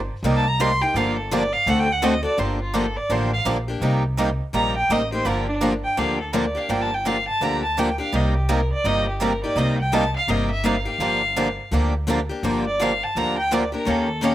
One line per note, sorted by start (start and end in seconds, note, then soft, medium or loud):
0.23 0.80 C2 loud
0.23 0.44 C3 medium
0.23 0.44 G3 medium
0.23 0.44 A#3 medium
0.23 0.44 D#4 medium
0.23 0.44 G4 medium
0.36 0.49 A5 loud
0.48 0.62 A#5 loud
0.60 0.70 C3 medium
0.60 0.70 G3 medium
0.60 0.70 A#3 medium
0.60 0.70 D#4 loud
0.60 0.71 G4 loud
0.60 0.83 C6 loud
0.81 0.95 A#3 medium
0.81 0.95 D#4 medium
0.81 0.95 G4 medium
0.81 0.98 G5 medium
0.94 1.52 G1 loud
0.94 1.16 D3 medium
0.94 1.16 F3 medium
0.94 1.16 A#3 medium
0.94 1.16 D4 medium
0.94 1.17 G4 medium
0.94 1.16 F5 medium
1.17 1.34 A4 medium
1.31 1.42 D3 medium
1.31 1.42 F3 loud
1.31 1.42 A#3 loud
1.31 1.42 D4 medium
1.31 1.43 G4 loud
1.31 1.54 D5 medium
1.53 1.71 F5 loud
1.66 2.24 D2 loud
1.66 1.87 D3 medium
1.66 1.88 A3 medium
1.66 1.87 C4 medium
1.66 1.88 F#4 medium
1.66 1.88 A4 medium
1.66 1.81 F#5 medium
1.79 1.94 G5 loud
1.92 2.05 F#5 medium
2.02 2.13 D3 medium
2.02 2.13 A3 medium
2.02 2.13 C4 loud
2.02 2.14 F#4 loud
2.02 2.14 A4 loud
2.02 2.24 D#5 medium
2.23 2.38 C4 soft
2.23 2.38 F#4 medium
2.23 2.37 A4 medium
2.23 2.40 D5 medium
2.37 2.95 G1 medium
2.37 2.58 D3 medium
2.37 2.58 F3 medium
2.37 2.59 A#3 medium
2.37 2.59 D4 medium
2.37 2.59 G4 medium
2.37 2.60 C5 medium
2.62 2.77 F4 medium
2.74 2.85 D3 medium
2.74 2.85 F3 medium
2.74 2.85 A#3 medium
2.74 2.85 D4 loud
2.74 2.85 G4 loud
2.74 2.98 A4 medium
2.97 3.14 D5 medium
3.09 3.40 A1 medium
3.09 3.30 D3 medium
3.09 3.30 F3 medium
3.09 3.31 A#3 medium
3.09 3.31 D4 medium
3.09 3.31 G4 medium
3.09 3.33 C5 medium
3.33 3.41 F5 loud
3.45 3.76 A#1 medium
3.45 3.57 D3 medium
3.45 3.56 F3 medium
3.45 3.57 A#3 medium
3.45 3.57 D4 medium
3.45 3.57 G4 loud
3.68 3.81 A#3 soft
3.68 3.82 D4 medium
3.68 3.81 G4 medium
3.81 4.39 C2 medium
3.81 4.02 C3 medium
3.81 4.02 G3 medium
3.81 4.03 A#3 medium
3.81 4.03 D#4 medium
3.81 4.03 G4 medium
4.18 4.29 C3 medium
4.18 4.29 G3 medium
4.18 4.29 A#3 loud
4.18 4.29 D#4 medium
4.18 4.29 G4 loud
4.53 4.84 A#1 medium
4.53 4.74 C3 medium
4.53 4.74 G3 medium
4.53 4.74 A#3 medium
4.53 4.74 D#4 medium
4.53 4.75 G4 medium
4.53 4.74 A#5 medium
4.77 4.93 G5 loud
4.89 5.20 A1 medium
4.89 5.01 C3 medium
4.89 5.01 G3 medium
4.89 5.01 A#3 medium
4.89 5.01 D#4 medium
4.89 5.01 G4 loud
4.89 5.12 D#5 medium
5.12 5.25 A#3 medium
5.12 5.26 D#4 medium
5.12 5.25 G4 medium
5.12 5.29 C5 medium
5.25 5.83 G1 medium
5.25 5.46 D3 medium
5.25 5.46 F3 medium
5.25 5.46 A#3 medium
5.25 5.46 D4 medium
5.25 5.47 G4 medium
5.25 5.47 A#4 medium
5.48 5.56 D4 medium
5.61 5.72 D3 medium
5.61 5.73 F3 medium
5.61 5.73 A#3 medium
5.61 5.73 D4 medium
5.61 5.73 G4 loud
5.84 6.00 G5 medium
5.97 6.55 D2 medium
5.97 6.18 D3 medium
5.97 6.18 F3 medium
5.97 6.18 A#3 medium
5.97 6.18 D4 medium
5.97 6.18 G4 medium
5.97 6.20 F5 medium
6.21 6.37 A4 medium
6.33 6.44 D3 loud
6.33 6.44 F3 medium
6.33 6.45 A#3 medium
6.33 6.44 D4 medium
6.33 6.45 G4 loud
6.33 6.59 D5 medium
6.55 6.68 A#3 medium
6.55 6.69 D4 medium
6.55 6.68 G4 medium
6.55 6.71 F5 medium
6.69 7.26 G1 medium
6.69 6.89 D3 medium
6.69 6.90 F3 medium
6.69 6.90 A#3 medium
6.69 6.90 D4 medium
6.69 6.90 G4 medium
6.69 6.83 G5 medium
6.82 6.96 A5 loud
6.94 7.09 G5 medium
7.06 7.16 D3 medium
7.06 7.16 F3 medium
7.06 7.17 A#3 medium
7.06 7.17 D4 medium
7.06 7.17 G4 medium
7.06 7.28 F5 medium
7.28 7.45 A5 loud
7.41 7.98 D2 medium
7.41 7.62 D3 medium
7.41 7.62 F3 medium
7.41 7.62 A#3 medium
7.41 7.62 D4 medium
7.41 7.63 G4 medium
7.41 7.62 A#5 medium
7.63 7.80 A5 medium
7.78 7.88 D3 medium
7.78 7.88 F3 medium
7.78 7.88 A#3 medium
7.78 7.89 D4 medium
7.78 7.89 G4 medium
7.78 7.99 G5 medium
7.98 8.12 A#3 soft
7.98 8.13 D4 medium
7.98 8.12 G4 medium
7.98 8.17 F5 medium
8.13 8.70 C2 medium
8.13 8.33 C3 medium
8.13 8.34 G3 medium
8.13 8.34 A#3 medium
8.13 8.34 D#4 medium
8.13 8.34 G4 medium
8.13 8.36 D#5 medium
8.37 8.53 G4 medium
8.49 8.60 C3 medium
8.49 8.60 G3 medium
8.49 8.60 A#3 medium
8.49 8.60 D#4 medium
8.49 8.60 G4 medium
8.49 8.72 A#4 medium
8.73 8.88 D5 medium
8.84 9.42 G1 medium
8.84 9.05 C3 medium
8.84 9.05 G3 medium
8.84 9.06 A#3 medium
8.84 9.05 D#4 medium
8.84 9.06 G4 medium
8.84 9.07 D#5 loud
9.09 9.24 G4 soft
9.21 9.32 C3 medium
9.21 9.32 G3 medium
9.21 9.32 A#3 medium
9.21 9.32 D#4 medium
9.21 9.32 G4 loud
9.21 9.43 A#4 medium
9.44 9.57 A#3 soft
9.44 9.57 D#4 medium
9.44 9.57 G4 medium
9.44 9.59 D5 medium
9.55 10.13 C2 medium
9.55 9.77 C3 medium
9.55 9.78 G3 medium
9.55 9.78 A#3 medium
9.55 9.78 D#4 medium
9.55 9.78 G4 medium
9.55 9.78 D#5 medium
9.79 9.95 G5 medium
9.92 10.03 C3 medium
9.92 10.03 G3 medium
9.92 10.03 A#3 loud
9.92 10.03 D#4 medium
9.92 10.03 G4 loud
9.92 10.14 A5 loud
10.17 10.31 F5 medium
10.28 10.85 G1 medium
10.28 10.49 C3 medium
10.28 10.49 G3 medium
10.28 10.49 A#3 medium
10.28 10.49 D#4 medium
10.28 10.49 G4 medium
10.28 10.50 D#5 medium
10.51 10.67 E5 loud
10.64 10.75 C3 medium
10.64 10.75 G3 medium
10.64 10.75 A#3 medium
10.64 10.75 D#4 medium
10.64 10.75 G4 loud
10.64 10.86 F5 medium
10.85 10.99 A#3 soft
10.85 11.00 D#4 medium
10.85 10.99 G4 medium
10.85 11.69 F5 loud
10.98 11.56 G1 medium
10.98 11.21 D3 medium
10.98 11.21 F3 medium
10.98 11.21 A#3 medium
10.98 11.21 D4 medium
10.98 11.21 G4 medium
11.36 11.47 D3 medium
11.36 11.47 F3 medium
11.36 11.47 A#3 medium
11.36 11.47 D4 loud
11.36 11.48 G4 loud
11.71 12.29 D2 medium
11.71 11.92 D3 medium
11.71 11.92 F3 medium
11.71 11.93 A#3 medium
11.71 11.93 D4 medium
11.71 11.93 G4 medium
12.07 12.18 D3 medium
12.07 12.18 F3 loud
12.07 12.19 A#3 medium
12.07 12.19 D4 medium
12.07 12.19 G4 loud
12.29 12.43 A#3 soft
12.29 12.43 D4 medium
12.29 12.43 G4 medium
12.43 13.01 G1 medium
12.43 12.64 D3 medium
12.43 12.64 F3 medium
12.43 12.64 A#3 medium
12.43 12.64 D4 medium
12.43 12.65 G4 medium
12.67 12.84 D5 medium
12.80 12.90 D3 medium
12.80 12.91 F3 medium
12.80 12.91 A#3 medium
12.80 12.91 D4 loud
12.80 12.91 G4 medium
12.80 13.05 F5 medium
13.04 13.19 A5 medium
13.15 13.73 D2 medium
13.15 13.36 D3 medium
13.15 13.37 F3 medium
13.15 13.37 A#3 medium
13.15 13.37 D4 medium
13.15 13.37 G4 medium
13.15 13.38 A#5 loud
13.38 13.55 G5 loud
13.51 13.62 D3 medium
13.51 13.62 F3 medium
13.51 13.62 A#3 medium
13.51 13.62 D4 medium
13.51 13.63 G4 loud
13.51 13.74 D5 medium
13.72 13.85 A#3 medium
13.72 13.87 D4 medium
13.72 13.86 G4 medium
13.72 13.91 A#4 medium
13.85 14.35 D#2 loud
13.85 14.07 D#3 medium
13.85 14.07 A#3 medium
13.85 14.07 C#4 medium
13.85 14.08 G4 medium
13.85 14.08 A#4 medium
13.89 14.35 A4 medium
14.21 14.33 D#3 medium
14.21 14.33 A#3 loud
14.21 14.34 C#4 loud
14.21 14.34 G4 loud
14.21 14.34 A#4 medium